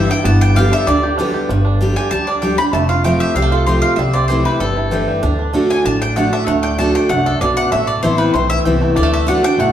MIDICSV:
0, 0, Header, 1, 5, 480
1, 0, Start_track
1, 0, Key_signature, 1, "major"
1, 0, Tempo, 311365
1, 385, Time_signature, 4, 2, 24, 8
1, 14986, End_track
2, 0, Start_track
2, 0, Title_t, "Mandolin"
2, 0, Program_c, 0, 25
2, 0, Note_on_c, 0, 76, 91
2, 155, Note_off_c, 0, 76, 0
2, 166, Note_on_c, 0, 79, 100
2, 383, Note_off_c, 0, 79, 0
2, 390, Note_on_c, 0, 81, 107
2, 630, Note_off_c, 0, 81, 0
2, 637, Note_on_c, 0, 79, 101
2, 858, Note_off_c, 0, 79, 0
2, 868, Note_on_c, 0, 77, 100
2, 1110, Note_off_c, 0, 77, 0
2, 1124, Note_on_c, 0, 76, 110
2, 1341, Note_off_c, 0, 76, 0
2, 1344, Note_on_c, 0, 74, 91
2, 2129, Note_off_c, 0, 74, 0
2, 3026, Note_on_c, 0, 80, 94
2, 3244, Note_off_c, 0, 80, 0
2, 3250, Note_on_c, 0, 81, 102
2, 3500, Note_off_c, 0, 81, 0
2, 3501, Note_on_c, 0, 74, 70
2, 3729, Note_off_c, 0, 74, 0
2, 3729, Note_on_c, 0, 79, 68
2, 3971, Note_off_c, 0, 79, 0
2, 3977, Note_on_c, 0, 83, 102
2, 4204, Note_off_c, 0, 83, 0
2, 4210, Note_on_c, 0, 81, 75
2, 4448, Note_off_c, 0, 81, 0
2, 4454, Note_on_c, 0, 77, 83
2, 4685, Note_off_c, 0, 77, 0
2, 4693, Note_on_c, 0, 79, 89
2, 4929, Note_off_c, 0, 79, 0
2, 4935, Note_on_c, 0, 76, 99
2, 5165, Note_off_c, 0, 76, 0
2, 5175, Note_on_c, 0, 77, 93
2, 5422, Note_off_c, 0, 77, 0
2, 5429, Note_on_c, 0, 69, 66
2, 5643, Note_off_c, 0, 69, 0
2, 5649, Note_on_c, 0, 72, 84
2, 5885, Note_on_c, 0, 77, 98
2, 5899, Note_off_c, 0, 72, 0
2, 6100, Note_off_c, 0, 77, 0
2, 6106, Note_on_c, 0, 76, 74
2, 6367, Note_off_c, 0, 76, 0
2, 6375, Note_on_c, 0, 74, 90
2, 6592, Note_off_c, 0, 74, 0
2, 6598, Note_on_c, 0, 72, 85
2, 6853, Note_off_c, 0, 72, 0
2, 6863, Note_on_c, 0, 71, 80
2, 7089, Note_off_c, 0, 71, 0
2, 7096, Note_on_c, 0, 69, 79
2, 7778, Note_off_c, 0, 69, 0
2, 8793, Note_on_c, 0, 80, 97
2, 9014, Note_off_c, 0, 80, 0
2, 9028, Note_on_c, 0, 81, 95
2, 9269, Note_off_c, 0, 81, 0
2, 9275, Note_on_c, 0, 79, 94
2, 9491, Note_off_c, 0, 79, 0
2, 9497, Note_on_c, 0, 78, 75
2, 9743, Note_off_c, 0, 78, 0
2, 9754, Note_on_c, 0, 76, 88
2, 9962, Note_off_c, 0, 76, 0
2, 9968, Note_on_c, 0, 78, 74
2, 10213, Note_off_c, 0, 78, 0
2, 10219, Note_on_c, 0, 79, 96
2, 10447, Note_off_c, 0, 79, 0
2, 10461, Note_on_c, 0, 81, 95
2, 10705, Note_off_c, 0, 81, 0
2, 10716, Note_on_c, 0, 79, 92
2, 10929, Note_off_c, 0, 79, 0
2, 10935, Note_on_c, 0, 78, 89
2, 11183, Note_off_c, 0, 78, 0
2, 11195, Note_on_c, 0, 69, 81
2, 11416, Note_off_c, 0, 69, 0
2, 11425, Note_on_c, 0, 74, 89
2, 11666, Note_on_c, 0, 78, 111
2, 11668, Note_off_c, 0, 74, 0
2, 11892, Note_off_c, 0, 78, 0
2, 11899, Note_on_c, 0, 76, 89
2, 12138, Note_on_c, 0, 74, 86
2, 12145, Note_off_c, 0, 76, 0
2, 12367, Note_off_c, 0, 74, 0
2, 12373, Note_on_c, 0, 72, 88
2, 12605, Note_off_c, 0, 72, 0
2, 12611, Note_on_c, 0, 71, 91
2, 12844, Note_off_c, 0, 71, 0
2, 12852, Note_on_c, 0, 72, 76
2, 13098, Note_on_c, 0, 76, 111
2, 13102, Note_off_c, 0, 72, 0
2, 13240, Note_off_c, 0, 76, 0
2, 13819, Note_on_c, 0, 74, 84
2, 14066, Note_off_c, 0, 74, 0
2, 14084, Note_on_c, 0, 76, 89
2, 14301, Note_off_c, 0, 76, 0
2, 14307, Note_on_c, 0, 78, 95
2, 14550, Note_off_c, 0, 78, 0
2, 14557, Note_on_c, 0, 79, 117
2, 14778, Note_off_c, 0, 79, 0
2, 14797, Note_on_c, 0, 78, 82
2, 14986, Note_off_c, 0, 78, 0
2, 14986, End_track
3, 0, Start_track
3, 0, Title_t, "Five-string banjo"
3, 0, Program_c, 1, 105
3, 0, Note_on_c, 1, 62, 74
3, 0, Note_on_c, 1, 67, 63
3, 147, Note_on_c, 1, 55, 61
3, 374, Note_on_c, 1, 59, 70
3, 844, Note_off_c, 1, 67, 0
3, 851, Note_on_c, 1, 67, 59
3, 1060, Note_off_c, 1, 59, 0
3, 1099, Note_off_c, 1, 62, 0
3, 1106, Note_on_c, 1, 62, 63
3, 1334, Note_off_c, 1, 55, 0
3, 1340, Note_on_c, 1, 55, 71
3, 1538, Note_off_c, 1, 67, 0
3, 1592, Note_on_c, 1, 67, 60
3, 1773, Note_off_c, 1, 62, 0
3, 1814, Note_on_c, 1, 62, 59
3, 2022, Note_off_c, 1, 55, 0
3, 2050, Note_off_c, 1, 67, 0
3, 2069, Note_on_c, 1, 67, 60
3, 2298, Note_off_c, 1, 62, 0
3, 2300, Note_off_c, 1, 67, 0
3, 2303, Note_on_c, 1, 55, 73
3, 2539, Note_on_c, 1, 62, 58
3, 2765, Note_off_c, 1, 55, 0
3, 2784, Note_on_c, 1, 55, 54
3, 3035, Note_on_c, 1, 67, 57
3, 3209, Note_off_c, 1, 62, 0
3, 3234, Note_off_c, 1, 55, 0
3, 3253, Note_on_c, 1, 55, 67
3, 3511, Note_on_c, 1, 62, 60
3, 3697, Note_off_c, 1, 67, 0
3, 3734, Note_on_c, 1, 67, 56
3, 3938, Note_off_c, 1, 55, 0
3, 3962, Note_off_c, 1, 62, 0
3, 3980, Note_on_c, 1, 62, 55
3, 4211, Note_on_c, 1, 57, 76
3, 4215, Note_off_c, 1, 62, 0
3, 4218, Note_off_c, 1, 67, 0
3, 4464, Note_on_c, 1, 65, 62
3, 4689, Note_off_c, 1, 57, 0
3, 4695, Note_on_c, 1, 57, 55
3, 4938, Note_on_c, 1, 67, 59
3, 5131, Note_off_c, 1, 65, 0
3, 5160, Note_off_c, 1, 57, 0
3, 5166, Note_on_c, 1, 55, 71
3, 5275, Note_off_c, 1, 55, 0
3, 5275, Note_on_c, 1, 57, 68
3, 5424, Note_on_c, 1, 65, 63
3, 5608, Note_off_c, 1, 67, 0
3, 5657, Note_off_c, 1, 57, 0
3, 5662, Note_on_c, 1, 67, 56
3, 5885, Note_off_c, 1, 65, 0
3, 5903, Note_on_c, 1, 65, 59
3, 6136, Note_off_c, 1, 65, 0
3, 6141, Note_off_c, 1, 67, 0
3, 6150, Note_on_c, 1, 55, 80
3, 6399, Note_on_c, 1, 60, 65
3, 6628, Note_on_c, 1, 64, 55
3, 6826, Note_off_c, 1, 55, 0
3, 6870, Note_on_c, 1, 67, 59
3, 7058, Note_off_c, 1, 60, 0
3, 7102, Note_on_c, 1, 55, 66
3, 7305, Note_off_c, 1, 64, 0
3, 7348, Note_on_c, 1, 64, 60
3, 7534, Note_off_c, 1, 67, 0
3, 7581, Note_on_c, 1, 67, 57
3, 7782, Note_off_c, 1, 55, 0
3, 7830, Note_on_c, 1, 55, 59
3, 8012, Note_off_c, 1, 64, 0
3, 8058, Note_on_c, 1, 62, 66
3, 8059, Note_off_c, 1, 55, 0
3, 8060, Note_off_c, 1, 67, 0
3, 8308, Note_off_c, 1, 62, 0
3, 8308, Note_on_c, 1, 62, 58
3, 8520, Note_off_c, 1, 62, 0
3, 8538, Note_on_c, 1, 62, 58
3, 8778, Note_off_c, 1, 62, 0
3, 8797, Note_on_c, 1, 62, 59
3, 9007, Note_off_c, 1, 62, 0
3, 9025, Note_on_c, 1, 62, 66
3, 9254, Note_off_c, 1, 62, 0
3, 9273, Note_on_c, 1, 62, 59
3, 9507, Note_on_c, 1, 57, 67
3, 9739, Note_off_c, 1, 62, 0
3, 9757, Note_on_c, 1, 62, 61
3, 9972, Note_off_c, 1, 57, 0
3, 9978, Note_on_c, 1, 57, 75
3, 10208, Note_off_c, 1, 62, 0
3, 10227, Note_on_c, 1, 62, 60
3, 10446, Note_off_c, 1, 62, 0
3, 10464, Note_on_c, 1, 62, 56
3, 10694, Note_off_c, 1, 62, 0
3, 10713, Note_on_c, 1, 62, 54
3, 10930, Note_off_c, 1, 57, 0
3, 10936, Note_on_c, 1, 57, 65
3, 11172, Note_off_c, 1, 62, 0
3, 11190, Note_on_c, 1, 62, 57
3, 11404, Note_off_c, 1, 62, 0
3, 11422, Note_on_c, 1, 62, 59
3, 11671, Note_off_c, 1, 57, 0
3, 11678, Note_on_c, 1, 57, 56
3, 11889, Note_off_c, 1, 57, 0
3, 11895, Note_on_c, 1, 57, 78
3, 11903, Note_off_c, 1, 62, 0
3, 12386, Note_on_c, 1, 64, 58
3, 12632, Note_on_c, 1, 67, 63
3, 12678, Note_off_c, 1, 57, 0
3, 12868, Note_on_c, 1, 57, 68
3, 13066, Note_off_c, 1, 64, 0
3, 13116, Note_on_c, 1, 64, 61
3, 13296, Note_off_c, 1, 67, 0
3, 13338, Note_on_c, 1, 67, 55
3, 13547, Note_off_c, 1, 57, 0
3, 13588, Note_on_c, 1, 57, 60
3, 13779, Note_off_c, 1, 64, 0
3, 13806, Note_off_c, 1, 57, 0
3, 13812, Note_on_c, 1, 55, 78
3, 13821, Note_off_c, 1, 67, 0
3, 13919, Note_off_c, 1, 55, 0
3, 13919, Note_on_c, 1, 57, 77
3, 14071, Note_on_c, 1, 62, 64
3, 14287, Note_off_c, 1, 62, 0
3, 14301, Note_off_c, 1, 57, 0
3, 14306, Note_on_c, 1, 62, 59
3, 14540, Note_off_c, 1, 62, 0
3, 14558, Note_on_c, 1, 62, 58
3, 14783, Note_on_c, 1, 57, 69
3, 14986, Note_off_c, 1, 57, 0
3, 14986, Note_off_c, 1, 62, 0
3, 14986, End_track
4, 0, Start_track
4, 0, Title_t, "Steel-string acoustic guitar"
4, 0, Program_c, 2, 25
4, 0, Note_on_c, 2, 43, 96
4, 151, Note_on_c, 2, 64, 67
4, 187, Note_on_c, 2, 62, 55
4, 337, Note_off_c, 2, 43, 0
4, 374, Note_off_c, 2, 64, 0
4, 392, Note_off_c, 2, 62, 0
4, 395, Note_on_c, 2, 43, 99
4, 868, Note_on_c, 2, 50, 93
4, 881, Note_on_c, 2, 55, 94
4, 892, Note_on_c, 2, 59, 92
4, 901, Note_on_c, 2, 67, 111
4, 1303, Note_off_c, 2, 43, 0
4, 1323, Note_off_c, 2, 50, 0
4, 1330, Note_off_c, 2, 55, 0
4, 1335, Note_off_c, 2, 59, 0
4, 1339, Note_off_c, 2, 67, 0
4, 1360, Note_on_c, 2, 50, 96
4, 1810, Note_off_c, 2, 50, 0
4, 1828, Note_on_c, 2, 50, 95
4, 1841, Note_on_c, 2, 55, 91
4, 1850, Note_on_c, 2, 59, 109
4, 1859, Note_on_c, 2, 67, 111
4, 2283, Note_off_c, 2, 50, 0
4, 2289, Note_off_c, 2, 55, 0
4, 2293, Note_off_c, 2, 59, 0
4, 2298, Note_off_c, 2, 67, 0
4, 2319, Note_on_c, 2, 43, 96
4, 2784, Note_on_c, 2, 50, 85
4, 2798, Note_on_c, 2, 55, 91
4, 2808, Note_on_c, 2, 62, 96
4, 2814, Note_on_c, 2, 67, 96
4, 3225, Note_off_c, 2, 43, 0
4, 3240, Note_off_c, 2, 50, 0
4, 3247, Note_off_c, 2, 55, 0
4, 3252, Note_off_c, 2, 62, 0
4, 3255, Note_off_c, 2, 67, 0
4, 3272, Note_on_c, 2, 50, 84
4, 3711, Note_off_c, 2, 50, 0
4, 3730, Note_on_c, 2, 50, 84
4, 3743, Note_on_c, 2, 55, 90
4, 3752, Note_on_c, 2, 62, 93
4, 3766, Note_on_c, 2, 67, 90
4, 3977, Note_off_c, 2, 50, 0
4, 3977, Note_off_c, 2, 67, 0
4, 3984, Note_off_c, 2, 55, 0
4, 3988, Note_off_c, 2, 62, 0
4, 3995, Note_on_c, 2, 67, 63
4, 4026, Note_on_c, 2, 62, 48
4, 4213, Note_off_c, 2, 67, 0
4, 4228, Note_off_c, 2, 62, 0
4, 4232, Note_on_c, 2, 41, 92
4, 4701, Note_on_c, 2, 53, 93
4, 4714, Note_on_c, 2, 57, 86
4, 4722, Note_on_c, 2, 60, 98
4, 4735, Note_on_c, 2, 65, 94
4, 5140, Note_off_c, 2, 41, 0
4, 5158, Note_off_c, 2, 53, 0
4, 5165, Note_off_c, 2, 57, 0
4, 5168, Note_off_c, 2, 60, 0
4, 5175, Note_off_c, 2, 65, 0
4, 5191, Note_on_c, 2, 48, 92
4, 5659, Note_on_c, 2, 53, 89
4, 5669, Note_on_c, 2, 57, 94
4, 5683, Note_on_c, 2, 60, 96
4, 5690, Note_on_c, 2, 65, 99
4, 6100, Note_off_c, 2, 48, 0
4, 6117, Note_off_c, 2, 53, 0
4, 6122, Note_off_c, 2, 57, 0
4, 6129, Note_off_c, 2, 60, 0
4, 6132, Note_off_c, 2, 65, 0
4, 6152, Note_on_c, 2, 48, 89
4, 6620, Note_on_c, 2, 52, 84
4, 6632, Note_on_c, 2, 57, 94
4, 6649, Note_on_c, 2, 60, 86
4, 6656, Note_on_c, 2, 64, 89
4, 7060, Note_off_c, 2, 48, 0
4, 7077, Note_off_c, 2, 52, 0
4, 7083, Note_off_c, 2, 57, 0
4, 7092, Note_off_c, 2, 60, 0
4, 7095, Note_off_c, 2, 64, 0
4, 7102, Note_on_c, 2, 43, 94
4, 7572, Note_on_c, 2, 52, 88
4, 7585, Note_on_c, 2, 57, 90
4, 7603, Note_on_c, 2, 60, 92
4, 7607, Note_on_c, 2, 64, 91
4, 8016, Note_off_c, 2, 43, 0
4, 8033, Note_off_c, 2, 52, 0
4, 8039, Note_off_c, 2, 57, 0
4, 8048, Note_off_c, 2, 60, 0
4, 8051, Note_off_c, 2, 64, 0
4, 8060, Note_on_c, 2, 50, 88
4, 8513, Note_off_c, 2, 50, 0
4, 8532, Note_on_c, 2, 50, 91
4, 8544, Note_on_c, 2, 57, 87
4, 8547, Note_on_c, 2, 62, 90
4, 8559, Note_on_c, 2, 66, 100
4, 8993, Note_off_c, 2, 50, 0
4, 8999, Note_off_c, 2, 57, 0
4, 9001, Note_off_c, 2, 62, 0
4, 9007, Note_off_c, 2, 66, 0
4, 9025, Note_on_c, 2, 45, 89
4, 9505, Note_on_c, 2, 50, 91
4, 9518, Note_on_c, 2, 57, 96
4, 9526, Note_on_c, 2, 62, 92
4, 9536, Note_on_c, 2, 66, 93
4, 9937, Note_off_c, 2, 45, 0
4, 9960, Note_off_c, 2, 50, 0
4, 9967, Note_off_c, 2, 57, 0
4, 9971, Note_off_c, 2, 62, 0
4, 9976, Note_off_c, 2, 66, 0
4, 9987, Note_on_c, 2, 50, 93
4, 10438, Note_off_c, 2, 50, 0
4, 10457, Note_on_c, 2, 50, 85
4, 10473, Note_on_c, 2, 57, 88
4, 10485, Note_on_c, 2, 62, 94
4, 10497, Note_on_c, 2, 66, 100
4, 10916, Note_off_c, 2, 50, 0
4, 10924, Note_off_c, 2, 57, 0
4, 10931, Note_off_c, 2, 62, 0
4, 10937, Note_off_c, 2, 66, 0
4, 10947, Note_on_c, 2, 42, 91
4, 11402, Note_off_c, 2, 42, 0
4, 11437, Note_on_c, 2, 47, 94
4, 11887, Note_off_c, 2, 47, 0
4, 11909, Note_on_c, 2, 45, 95
4, 12373, Note_on_c, 2, 52, 93
4, 12396, Note_on_c, 2, 60, 93
4, 12402, Note_on_c, 2, 59, 94
4, 12415, Note_on_c, 2, 64, 102
4, 12821, Note_off_c, 2, 45, 0
4, 12836, Note_off_c, 2, 52, 0
4, 12847, Note_off_c, 2, 60, 0
4, 12850, Note_off_c, 2, 59, 0
4, 12857, Note_off_c, 2, 64, 0
4, 12880, Note_on_c, 2, 52, 86
4, 13323, Note_off_c, 2, 52, 0
4, 13341, Note_on_c, 2, 52, 97
4, 13355, Note_on_c, 2, 60, 92
4, 13366, Note_on_c, 2, 59, 95
4, 13371, Note_on_c, 2, 64, 96
4, 13800, Note_off_c, 2, 52, 0
4, 13807, Note_off_c, 2, 60, 0
4, 13812, Note_off_c, 2, 59, 0
4, 13815, Note_off_c, 2, 64, 0
4, 13834, Note_on_c, 2, 50, 96
4, 14266, Note_off_c, 2, 50, 0
4, 14285, Note_on_c, 2, 50, 85
4, 14301, Note_on_c, 2, 57, 97
4, 14307, Note_on_c, 2, 62, 108
4, 14320, Note_on_c, 2, 66, 109
4, 14527, Note_off_c, 2, 66, 0
4, 14536, Note_off_c, 2, 50, 0
4, 14544, Note_off_c, 2, 57, 0
4, 14546, Note_on_c, 2, 66, 59
4, 14548, Note_off_c, 2, 62, 0
4, 14582, Note_on_c, 2, 62, 55
4, 14770, Note_off_c, 2, 66, 0
4, 14789, Note_off_c, 2, 62, 0
4, 14795, Note_on_c, 2, 45, 90
4, 14986, Note_off_c, 2, 45, 0
4, 14986, End_track
5, 0, Start_track
5, 0, Title_t, "Upright bass"
5, 0, Program_c, 3, 32
5, 386, Note_on_c, 3, 31, 104
5, 1090, Note_off_c, 3, 31, 0
5, 1342, Note_on_c, 3, 38, 86
5, 2047, Note_off_c, 3, 38, 0
5, 2301, Note_on_c, 3, 31, 92
5, 3006, Note_off_c, 3, 31, 0
5, 3257, Note_on_c, 3, 38, 80
5, 3964, Note_off_c, 3, 38, 0
5, 4211, Note_on_c, 3, 29, 97
5, 4920, Note_off_c, 3, 29, 0
5, 5168, Note_on_c, 3, 36, 86
5, 5878, Note_off_c, 3, 36, 0
5, 6121, Note_on_c, 3, 36, 96
5, 6833, Note_off_c, 3, 36, 0
5, 7093, Note_on_c, 3, 31, 84
5, 7801, Note_off_c, 3, 31, 0
5, 8068, Note_on_c, 3, 38, 96
5, 8770, Note_off_c, 3, 38, 0
5, 9020, Note_on_c, 3, 33, 83
5, 9726, Note_off_c, 3, 33, 0
5, 9983, Note_on_c, 3, 38, 89
5, 10688, Note_off_c, 3, 38, 0
5, 10942, Note_on_c, 3, 36, 82
5, 11350, Note_off_c, 3, 36, 0
5, 11427, Note_on_c, 3, 35, 87
5, 11833, Note_off_c, 3, 35, 0
5, 11900, Note_on_c, 3, 33, 96
5, 12254, Note_off_c, 3, 33, 0
5, 12383, Note_on_c, 3, 33, 90
5, 12791, Note_off_c, 3, 33, 0
5, 12867, Note_on_c, 3, 35, 79
5, 13274, Note_off_c, 3, 35, 0
5, 13351, Note_on_c, 3, 36, 81
5, 13756, Note_off_c, 3, 36, 0
5, 13836, Note_on_c, 3, 38, 97
5, 14537, Note_off_c, 3, 38, 0
5, 14776, Note_on_c, 3, 35, 91
5, 14986, Note_off_c, 3, 35, 0
5, 14986, End_track
0, 0, End_of_file